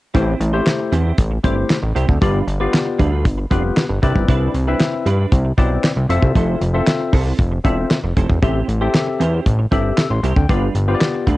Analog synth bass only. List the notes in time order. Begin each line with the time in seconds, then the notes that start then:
0.15 A1
0.40 A1
0.92 E2
1.18 A1
1.44 G1
1.83 A1
1.96 C2
2.09 D2
2.22 G1
2.47 G1
2.99 D2
3.25 G1
3.51 F1
3.89 G1
4.03 C2
4.15 G1
4.28 C2
4.54 C2
5.06 G2
5.32 C2
5.58 B1
5.96 C2
6.09 F1
6.22 C2
6.35 F1
6.61 F1
7.13 C2
7.39 F1
7.65 E1
8.03 F1
8.17 F1
8.29 E1
8.42 A1
8.68 A1
9.20 E2
9.46 A1
9.72 G1
10.10 A1
10.23 C2
10.36 D2
10.49 G1
10.75 G1
11.27 D2